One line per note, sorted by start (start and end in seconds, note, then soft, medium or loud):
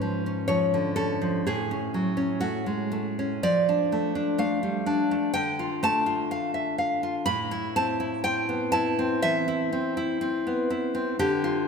0.00 1.41 G#2 medium
0.00 0.48 F3 medium
0.00 0.25 C#4 medium
0.00 0.44 B4 medium
0.26 0.96 C#4 medium
0.48 1.20 F3 medium
0.48 0.94 C#5 medium
0.74 1.45 D3 medium
0.96 1.45 C#4 medium
0.96 1.42 A4 medium
1.22 1.45 F3 medium
1.47 3.39 A2 medium
1.47 2.37 G#4 medium
1.71 2.16 C#4 medium
1.94 2.66 F#3 medium
2.17 3.18 C#4 medium
2.41 2.90 A3 medium
2.41 3.38 F#4 medium
2.66 3.43 G#3 medium
2.92 3.42 A3 medium
3.19 3.43 C#4 medium
3.43 5.29 F3 medium
3.43 4.35 D5 loud
3.69 4.14 D4 medium
3.92 4.37 A3 medium
4.15 4.62 D4 medium
4.38 5.10 A3 medium
4.38 5.29 F5 medium
4.63 5.33 G3 medium
4.86 5.33 D4 medium
5.11 5.34 A3 medium
5.34 7.25 D3 medium
5.34 5.79 G5 loud
5.59 6.05 F4 medium
5.83 7.29 A3 medium
5.83 7.25 A5 loud
6.06 7.02 F4 medium
6.31 6.54 F5 medium
6.54 6.78 E5 medium
6.78 7.28 F5 medium
7.03 7.28 F4 medium
7.26 9.19 A2 medium
7.26 7.73 B5 loud
7.51 7.99 E4 medium
7.76 8.24 C4 medium
7.76 8.23 A5 loud
8.00 8.72 E4 medium
8.24 8.98 C4 medium
8.24 8.71 G5 loud
8.49 9.96 B3 medium
8.72 9.47 E4 medium
8.72 9.20 A5 loud
8.99 9.71 C4 medium
9.22 10.68 E3 medium
9.22 11.13 E5 loud
9.48 9.96 E4 medium
9.73 10.20 C4 medium
9.97 10.69 E4 medium
10.21 10.93 C4 medium
10.47 11.19 B3 medium
10.70 11.18 E4 medium
10.95 11.18 C4 medium
11.19 11.68 D3 medium
11.19 11.66 G4 loud
11.44 11.68 F4 medium